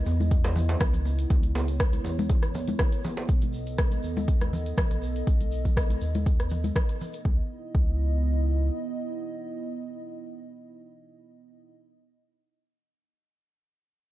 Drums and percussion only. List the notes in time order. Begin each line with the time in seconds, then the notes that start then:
0.06 djembe tone, shaker
0.20 high conga, shaker
0.31 kick, closed hi-hat, djembe tone, shaker
0.44 cross-stick, closed hi-hat, djembe slap, high conga
0.56 djembe tone, low conga, shaker
0.69 closed hi-hat, djembe slap, shaker
0.80 kick, cross-stick, closed hi-hat, djembe tone, low conga, shaker
0.93 closed hi-hat, low conga
1.05 djembe tone, shaker
1.19 closed hi-hat, shaker
1.30 kick, closed hi-hat, djembe tone, shaker
1.43 closed hi-hat, high conga
1.55 djembe slap, djembe tone, shaker
1.68 closed hi-hat, shaker
1.80 kick, cross-stick, closed hi-hat, djembe tone, shaker
1.93 closed hi-hat, high conga
2.04 djembe tone, shaker
2.19 high conga, shaker
2.29 kick, closed hi-hat, djembe tone, shaker
2.43 cross-stick, closed hi-hat
2.54 djembe tone, low conga, shaker
2.67 closed hi-hat, high conga, shaker
2.79 kick, cross-stick, closed hi-hat, djembe tone, low conga, shaker
2.92 closed hi-hat
3.04 djembe tone, low conga, shaker
3.17 closed hi-hat, djembe slap, shaker
3.27 kick, closed hi-hat, shaker
3.42 closed hi-hat, high conga
3.53 shaker
3.66 closed hi-hat, shaker
3.78 kick, cross-stick, closed hi-hat, shaker
3.91 closed hi-hat, high conga
4.03 shaker
4.17 high conga, shaker
4.28 kick, closed hi-hat, shaker
4.41 cross-stick, closed hi-hat, high conga
4.53 low conga, shaker
4.66 closed hi-hat, shaker
4.77 kick, cross-stick, closed hi-hat, low conga, shaker
4.91 closed hi-hat, low conga
5.02 shaker
5.16 closed hi-hat, shaker
5.27 kick, closed hi-hat, shaker
5.41 closed hi-hat, high conga
5.51 shaker
5.65 kick, closed hi-hat, low conga, shaker
5.77 kick, cross-stick, closed hi-hat, shaker
5.90 closed hi-hat, high conga
6.01 shaker
6.14 closed hi-hat, high conga, shaker
6.26 kick, closed hi-hat, shaker
6.40 cross-stick, closed hi-hat
6.49 low conga, shaker
6.63 closed hi-hat, high conga, shaker
6.75 kick, cross-stick, closed hi-hat, low conga, shaker
6.89 closed hi-hat
7.01 low conga, shaker
7.13 closed hi-hat, shaker
7.25 kick
7.75 kick